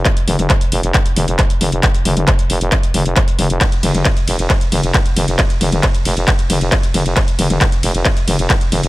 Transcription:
0.05 kick loud
0.05 clap loud
0.05 closed hi-hat loud
0.17 closed hi-hat medium
0.28 0.37 F1 loud
0.28 open hi-hat loud
0.28 mid tom medium
0.39 0.48 F1 medium
0.39 closed hi-hat medium
0.39 mid tom medium
0.50 kick loud
0.50 clap loud
0.50 closed hi-hat medium
0.61 closed hi-hat medium
0.72 0.81 F1 loud
0.72 open hi-hat loud
0.83 0.92 F1 medium
0.83 closed hi-hat medium
0.94 kick loud
0.94 clap loud
0.94 closed hi-hat loud
1.06 closed hi-hat medium
1.16 1.26 F1 loud
1.16 open hi-hat loud
1.16 mid tom medium
1.28 1.37 F1 medium
1.28 closed hi-hat medium
1.39 kick loud
1.39 clap loud
1.39 closed hi-hat loud
1.50 closed hi-hat medium
1.61 1.70 F1 medium
1.61 open hi-hat loud
1.61 mid tom loud
1.72 1.81 F1 medium
1.72 closed hi-hat medium
1.83 kick loud
1.83 clap loud
1.83 closed hi-hat medium
1.95 closed hi-hat medium
2.05 2.15 F1 loud
2.05 open hi-hat loud
2.05 mid tom medium
2.17 2.25 F1 medium
2.17 closed hi-hat medium
2.17 mid tom loud
2.28 kick loud
2.28 clap loud
2.28 closed hi-hat medium
2.39 closed hi-hat medium
2.50 2.59 F1 medium
2.50 open hi-hat loud
2.61 2.70 F1 medium
2.61 closed hi-hat medium
2.72 kick loud
2.72 clap loud
2.72 closed hi-hat loud
2.83 closed hi-hat medium
2.94 3.03 F1 loud
2.94 open hi-hat loud
2.94 mid tom medium
3.06 3.14 F1 medium
3.06 closed hi-hat soft
3.16 kick loud
3.16 clap loud
3.16 closed hi-hat medium
3.28 closed hi-hat medium
3.39 3.48 F1 loud
3.39 open hi-hat loud
3.39 mid tom loud
3.50 3.59 F1 medium
3.50 closed hi-hat medium
3.61 kick loud
3.61 clap loud
3.61 closed hi-hat medium
3.61 ride medium
3.72 closed hi-hat medium
3.83 3.92 F1 loud
3.83 open hi-hat loud
3.83 mid tom loud
3.83 ride medium
3.94 4.03 F1 medium
3.94 closed hi-hat soft
3.94 mid tom medium
4.05 kick loud
4.05 clap loud
4.05 closed hi-hat medium
4.05 ride medium
4.17 closed hi-hat medium
4.28 4.37 F1 medium
4.28 open hi-hat loud
4.28 ride medium
4.39 4.48 F1 medium
4.39 closed hi-hat medium
4.50 kick loud
4.50 clap loud
4.50 closed hi-hat medium
4.50 ride medium
4.61 closed hi-hat soft
4.72 4.81 F1 loud
4.72 open hi-hat loud
4.72 mid tom medium
4.72 ride medium
4.83 4.92 F1 medium
4.83 closed hi-hat soft
4.94 kick loud
4.94 clap loud
4.94 closed hi-hat medium
4.94 ride medium
5.06 closed hi-hat medium
5.16 5.26 F1 loud
5.16 open hi-hat loud
5.16 mid tom loud
5.16 ride medium
5.28 5.37 F1 medium
5.28 closed hi-hat medium
5.39 kick loud
5.39 clap loud
5.39 closed hi-hat medium
5.39 ride medium
5.50 closed hi-hat medium
5.61 5.70 F1 loud
5.61 open hi-hat loud
5.61 mid tom medium
5.61 ride medium
5.72 5.81 F1 medium
5.72 closed hi-hat medium
5.72 mid tom loud
5.83 kick loud
5.83 clap loud
5.83 closed hi-hat medium
5.83 ride medium
5.95 closed hi-hat medium
6.05 6.14 F1 medium
6.05 open hi-hat loud
6.05 ride medium
6.17 6.25 F1 medium
6.17 closed hi-hat medium
6.28 kick loud
6.28 clap loud
6.28 closed hi-hat medium
6.28 ride medium
6.39 closed hi-hat soft
6.50 6.59 F1 medium
6.50 open hi-hat loud
6.50 mid tom medium
6.50 ride medium
6.61 6.70 F1 medium
6.61 closed hi-hat soft
6.72 kick loud
6.72 clap loud
6.72 closed hi-hat medium
6.72 ride medium
6.83 closed hi-hat medium
6.94 7.03 F1 medium
6.94 open hi-hat loud
6.94 mid tom loud
6.94 ride medium
7.06 7.14 F1 medium
7.06 closed hi-hat medium
7.16 kick loud
7.16 clap loud
7.16 closed hi-hat medium
7.16 ride medium
7.28 closed hi-hat medium
7.39 7.48 F1 medium
7.39 open hi-hat loud
7.39 mid tom loud
7.39 ride medium
7.50 7.59 F1 medium
7.50 closed hi-hat medium
7.50 mid tom medium
7.61 kick loud
7.61 clap loud
7.61 closed hi-hat medium
7.61 ride medium
7.72 closed hi-hat medium
7.83 7.92 F1 medium
7.83 open hi-hat loud
7.83 ride medium
7.95 8.03 F1 medium
7.95 closed hi-hat medium
8.05 kick loud
8.05 clap loud
8.05 closed hi-hat medium
8.05 ride medium
8.17 closed hi-hat medium
8.28 8.37 F1 loud
8.28 open hi-hat loud
8.28 mid tom medium
8.28 ride medium
8.39 8.48 F1 medium
8.39 closed hi-hat medium
8.50 kick loud
8.50 clap loud
8.50 closed hi-hat medium
8.50 ride medium
8.61 closed hi-hat medium
8.72 8.81 F1 loud
8.72 open hi-hat loud
8.72 mid tom loud
8.72 ride medium
8.83 8.88 F1 medium
8.83 closed hi-hat medium

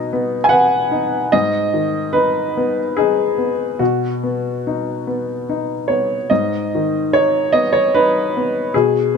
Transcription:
0.00 1.29 B2 soft
0.00 0.13 B3 soft
0.00 0.37 D#4 soft
0.00 0.45 D#5 medium
0.13 0.77 B3 soft
0.44 0.52 G#5 soft
0.49 1.16 B4 soft
0.49 0.91 F#5 medium
0.91 1.32 D#4 soft
1.32 3.76 G#2 soft
1.32 2.13 D#5 medium
1.74 2.38 D#3 soft
2.13 2.79 D#4 soft
2.13 2.95 B4 medium
2.57 3.22 B3 soft
2.97 3.64 D#4 soft
2.97 3.80 G#4 medium
3.38 3.80 B3 soft
3.79 6.26 B2 soft
3.79 5.89 F#4 soft
4.24 4.89 B3 soft
4.67 5.32 D#4 soft
5.07 5.73 B3 soft
5.49 6.15 D#4 soft
5.88 6.31 B3 soft
5.88 6.30 C#5 soft
6.30 8.69 G#2 soft
6.30 7.11 D#5 soft
6.75 7.37 D#3 soft
7.13 7.77 D#4 soft
7.13 7.53 C#5 medium
7.53 8.17 B3 soft
7.53 7.72 D#5 medium
7.73 7.92 C#5 medium
7.95 8.58 D#4 soft
7.95 8.74 B4 medium
8.37 8.75 B3 soft
8.74 9.17 B2 soft
8.74 9.17 G#4 medium

